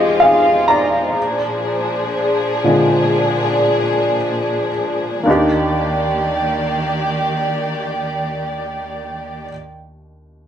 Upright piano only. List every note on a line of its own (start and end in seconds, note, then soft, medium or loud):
0.00 1.19 F4 soft
0.00 0.19 G4 soft
0.00 0.22 G#4 medium
0.00 0.69 D5 medium
0.00 0.23 D#5 medium
0.00 0.20 F5 medium
0.20 0.66 G#4 medium
0.20 0.70 F5 medium
0.68 4.69 D5 soft
0.68 4.68 A#5 medium
2.64 4.15 A#2 soft
2.64 4.15 D3 soft
2.64 4.15 G#3 soft
5.23 9.48 D#2 soft
5.23 9.45 A#3 soft
5.23 9.47 D4 soft
5.28 9.49 D#4 soft
5.28 9.52 G4 medium